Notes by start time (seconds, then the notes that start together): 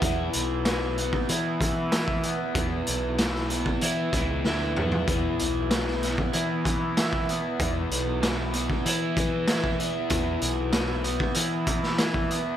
Already playing: B3 E4
0.02 E2 E3, kick, closed hi-hat
0.33 B1, closed hi-hat
0.65 E3, snare, closed hi-hat
0.98 B3, closed hi-hat
1.13 kick
1.29 E3 E4, closed hi-hat
1.60 E3, kick, closed hi-hat
1.92 E4, snare, closed hi-hat
2.08 kick
2.23 B3, closed hi-hat
2.55 E2 E3, kick, closed hi-hat
2.87 B1, closed hi-hat
3.18 E3, snare, closed hi-hat
3.35 snare
3.49 B3, closed hi-hat
3.66 kick
3.81 E3 E4, closed hi-hat
4.13 C#2 E3, kick, closed hi-hat
4.45 D2 E4, snare
4.76 E2 B3, mid tom
4.92 floor tom
5.07 E2 E3, kick, closed hi-hat
5.39 B1, closed hi-hat
5.71 E3, snare, closed hi-hat
5.87 snare
6.03 B3, snare, closed hi-hat
6.18 kick
6.33 E3 E4, closed hi-hat
6.65 E3, kick, closed hi-hat
6.97 E4, snare, closed hi-hat
7.13 kick
7.29 B3, closed hi-hat
7.60 E2 E3, kick, closed hi-hat
7.90 B1, closed hi-hat
8.22 E3, snare, closed hi-hat
8.53 B3, closed hi-hat
8.70 kick
8.85 E3 E4, closed hi-hat
9.17 E3, kick, closed hi-hat
9.47 E4, snare, closed hi-hat
9.64 kick
9.79 B3, closed hi-hat
10.10 E2 E3, kick, closed hi-hat
10.41 B1, closed hi-hat
10.73 E3, snare, closed hi-hat
11.04 B3, closed hi-hat
11.20 kick
11.34 E3 E4, closed hi-hat
11.67 E3, kick, closed hi-hat
11.83 snare
11.98 E4, snare, closed hi-hat
12.14 kick
12.30 B3, closed hi-hat